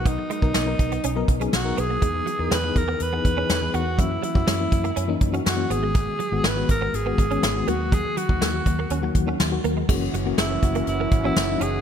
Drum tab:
CC |----------------|----------------|----------------|----------------|
HH |x-x-x-xxx-xxx-x-|x-x-x-x-x-x-x-x-|x-x-x-xxx-xxx-x-|x-x-x-x-x-xxx-x-|
SD |----o-------o---|----o-------o---|----o-------o---|----o-------o---|
BD |o--o--o---o-----|o-----o---o-----|o--o--o---o-----|o-----o---o-----|

CC |----------------|x---------------|
HH |x-x-x-x-x-x-x-x-|--x-x-xxx-x-x-x-|
SD |----o-------o---|----o-------o---|
BD |o--o--o---o-----|o-----o---o-----|